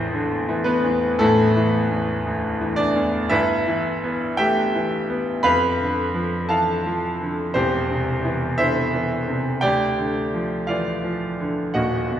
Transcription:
grand piano
Already playing: A1 E2 E3 C4 A4 C5
0.13 D3
0.49 E3
0.64 B3 B4
0.84 E2
1.19 A1 A3 E4 A4
1.57 E3
1.91 E2
2.26 D2
2.61 E3
2.76 D4 D5
2.96 E2
3.29 G1 G2 E4 B4 E5
3.67 E3
4.04 B3
4.37 A3 G4 E5 G5
4.75 E3
5.10 B3
5.43 F2 B4 F5 B5
5.80 D3
6.14 F3
6.49 E3 A4 F5 A5
6.86 F3
7.21 D3
7.54 E1 E2 C4 G4 C5
7.91 C3
8.25 E3
8.58 D3 E4 C5 E5
8.94 E3
9.29 C3
9.61 D2 G4 D5 G5
9.98 D3
10.34 F3
10.67 E3 F4 D5 F5
11.04 F3
11.40 D3
11.74 D#1 D#2 F#4 D#5 F#5
12.11 B2

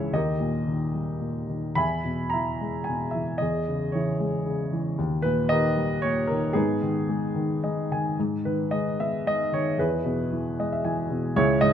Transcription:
grand piano
Already playing: C#2 G#2 C#3 E3 E4 G#4 C#5 E5
0.13 D#2 G4 A#4 D#5
0.40 A#2
0.66 D#3
0.94 G3
1.21 A#2
1.49 D#3
1.75 E2 E5 G#5 B5
2.04 B2
2.30 E5 A#5
2.34 E3
2.61 G#3
2.84 G#5
2.89 B2
3.11 E3 E5
3.38 E2 D#5
3.42 G#4
3.68 C#3
3.92 E3 E4 G#4 C#5
4.20 G#3
4.46 C#3
4.72 E3
4.98 D#2
5.22 A#2 B4
5.49 D#3 G4 A#4 D#5
5.76 G3
6.02 A#2 C#5
6.27 D#3 A#4
6.53 G#2 B3 D#4 G#4
6.82 D#3
7.09 G#3
7.35 D#3
7.63 G#3 D#5
7.92 D#3 G#5
8.19 G#2
8.45 D#3 B4
8.71 G#3 D#5
8.99 B3 E5
9.26 G#3 D#5
9.52 D#3 C#5
9.78 E2 E4 G#4 B4
10.05 B2
10.32 E3
10.59 G#3 D#5
10.72 E5
10.85 E3 G#5
11.10 B2
11.36 C#2 E4 G#4 C#5
11.61 G#2 D#5

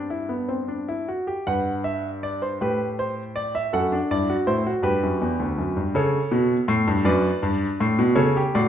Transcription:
grand piano
Already playing: G2 G5
0.10 E4
0.29 B3
0.48 C4
0.68 D4
0.88 E4
1.08 F#4
1.27 G4
1.47 G2 B4 F#5
1.84 E5
2.23 D5
2.42 C5
2.61 A2 G4 B4
2.99 C5
3.36 D5
3.55 E5
3.73 F#2 A4 F#5
3.92 D4
4.11 G2 E4 D5
4.30 F#4
4.47 A2 E4 C5
4.67 F#4
4.83 G2 G4 B4
5.03 F#2
5.21 E2
5.40 D2
5.58 F#2
5.77 G2
5.95 C#3 A4 C#5
6.31 B2
6.68 A2
6.88 G2
7.05 F#2 B4 D5
7.43 G2
7.80 A2
7.99 B2
8.15 C#3 A4 C#5
8.37 G4
8.55 A2 F#4 D5

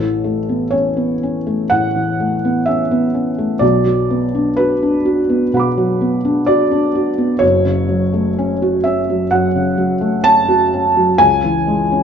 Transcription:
felt piano
Already playing: A1 A2 A4
0.00 E3
0.24 A3
0.49 B3
0.71 C#4 C#5
0.97 B3
1.23 C#4
1.47 A3
1.70 A2 F#5
1.96 E3
2.20 A3
2.45 B3
2.66 C#4 E5
2.91 B3
3.14 C#4
3.38 A3
3.59 B1 B2 D5
3.85 F#3
4.10 B3
4.35 D4
4.57 F#4 B4
4.82 D4
5.05 F#4
5.29 B3
5.54 B2 F#5 B5
5.59 D6
5.77 F#3
6.01 B3
6.25 D4
6.46 F#4 D5
6.71 D4
6.95 F#4
7.18 B3
7.39 F#1 F#2 C#5
7.65 C#3
7.89 F#3
8.14 A3
8.38 C#4
8.62 F#4
8.84 C#4 E5
9.10 F#3
9.31 F#2 F#5
9.55 C#3
9.78 F#3
10.01 A3
10.24 C#4 A5
10.48 F#4
10.74 C#4
10.97 F#3
11.18 C#2 C#3 G#5
11.44 E3
11.67 G#3
11.92 C#4

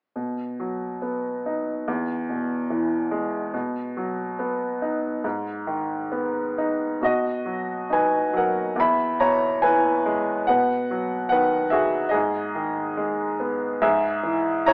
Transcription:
upright piano
0.16 B2
0.60 F#3
1.02 B3
1.46 D#4
1.88 E2
2.29 B2
2.70 E3
3.11 G#3
3.54 B2
3.97 F#3
4.39 B3
4.82 D#4
5.24 G#2
5.67 D#3
6.12 B3
6.58 D#4
7.01 B2 F#4 D#5
7.45 F#3
7.90 D#4 B4 G#5
8.33 F#3 A#4 F#5
8.76 E2 E5
8.80 B5
9.20 B2 C#5 A#5
9.62 E3 B4 G#5
10.06 G#3
10.47 B2 B4 F#5
10.91 F#3
11.29 D#3 B4 F#5
11.70 F#4 G#4 E5
12.09 G#4 D#5
12.14 G#2
12.55 D#3
12.97 G#3
13.40 B3
13.82 G#2 G#4 E5
14.23 E3
14.66 E4 C#5 A#5

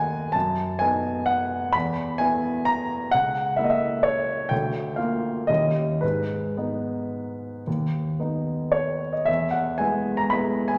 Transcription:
grand piano
Already playing: D#2 A#3 D#4 F#5 G#5 A#5
0.32 F#2 A5
0.79 B3 D#4 G#5
1.26 F#5
1.73 E2 B5
2.18 B3 E4 G#5
2.65 A#5
3.11 C#2 F#5
3.56 A#3 E4 E5
3.64 D#5
3.70 E5
4.03 C#5
4.49 D2 G5
4.96 A#3 F4 F5
5.47 D#2 G3 C#4 E4 D#5
6.01 G#2 B4
6.57 B3 D#4
7.67 D#2
8.20 B3 D#4
8.72 C#5
9.13 D#5
9.25 E2 E5
9.51 F#5
9.78 G#3 B3 E4 G#5
10.17 A#5
10.30 G#3 B3 E4 B5
10.68 G#5

